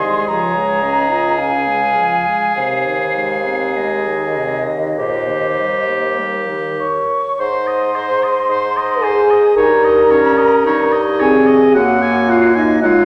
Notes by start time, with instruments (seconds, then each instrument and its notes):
Already playing: bassoon C2, oboe G#4, clarinet D#5, flute C6
0.04 french horn G#3
0.27 bassoon C#2, french horn F3, oboe G#4, clarinet C#5, flute A#5
0.56 french horn G#3
0.82 french horn C#4, clarinet D#5
1.10 french horn F4
1.38 french horn C#4, clarinet F5, flute G#5
1.68 french horn G#3
1.97 french horn F3
2.27 french horn G#3
2.56 bassoon D#2, french horn C3, clarinet C5, flute F5
2.87 french horn D#3
3.16 french horn G#3
3.46 french horn C4
3.76 french horn G#3, clarinet G#4, flute D#5
4.07 french horn D#3
4.37 french horn C3
4.68 french horn D#3
4.98 french horn A#2, oboe G4, clarinet C5
5.29 french horn D#3
5.59 french horn G3
5.89 french horn A#3
6.19 french horn G3, clarinet A#4
6.49 french horn D#3
6.80 french horn C#5, flute C#6
7.39 bassoon G#2, oboe C5, french horn C5, flute C6
7.67 oboe D#5
7.95 oboe C5
8.24 oboe D#5
8.49 bassoon G#2, oboe C5
8.77 oboe D#5
9.02 french horn G#4, oboe C5, flute G#5
9.31 oboe D#5
9.56 bassoon G2, clarinet D#4, french horn A#4, oboe C#5, flute A#5
9.84 oboe D#5
10.11 clarinet C#4, oboe C#5
10.37 oboe D#5
10.66 bassoon G2, clarinet D#4, oboe C#5
10.92 oboe D#5
11.20 clarinet C4, french horn G#4, oboe C#5, flute G#5
11.47 oboe D#5
11.74 bassoon F#2, clarinet A#3, french horn F#4, flute F#5, oboe F#5
12.02 oboe G#5
12.29 french horn F4, flute F5, oboe F#5
12.55 french horn D#4, flute D#5, oboe G#5
12.82 bassoon F#2, clarinet G#3, french horn F4, flute F5, oboe F#5